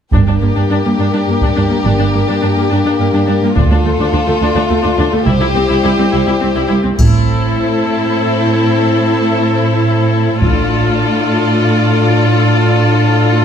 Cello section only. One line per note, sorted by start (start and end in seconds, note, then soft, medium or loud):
0.12 0.18 G2 soft
0.27 0.32 G2 soft
0.41 0.47 G2 soft
0.55 0.61 G2 soft
0.70 0.76 G2 soft
0.85 0.90 G2 soft
0.99 1.04 G2 soft
1.13 1.19 G2 soft
1.28 1.33 G2 soft
1.42 1.48 G2 soft
1.57 1.62 G2 soft
1.71 1.77 G2 soft
1.85 1.91 G2 soft
1.99 2.05 G2 soft
2.14 2.19 G2 soft
2.28 2.33 G2 soft
2.42 2.48 G2 soft
2.56 2.62 G2 soft
2.71 2.76 G2 soft
2.85 2.90 G2 soft
2.99 3.05 G2 soft
3.13 3.18 G2 soft
3.27 3.33 G2 soft
3.41 3.47 G2 soft
3.55 3.61 D2 soft
3.69 3.75 D2 soft
3.84 3.90 D2 soft
3.98 4.04 D2 medium
4.12 4.18 D2 soft
4.27 4.33 D2 soft
4.41 4.47 D2 medium
4.55 4.61 D2 soft
4.69 4.75 D2 soft
4.84 4.90 D2 medium
4.98 5.04 D2 soft
5.13 5.19 D2 soft
5.27 5.33 C2 medium
5.41 5.47 C2 soft
5.56 5.61 C2 soft
5.70 5.76 C2 medium
5.84 5.90 C2 soft
5.99 6.04 C2 soft
6.13 6.19 C2 soft
6.27 6.33 C2 soft
6.42 6.48 C2 soft
6.56 6.62 C2 soft
6.70 6.76 C2 soft
6.84 6.90 C2 soft
6.99 10.37 A2 soft
10.41 13.45 A2 soft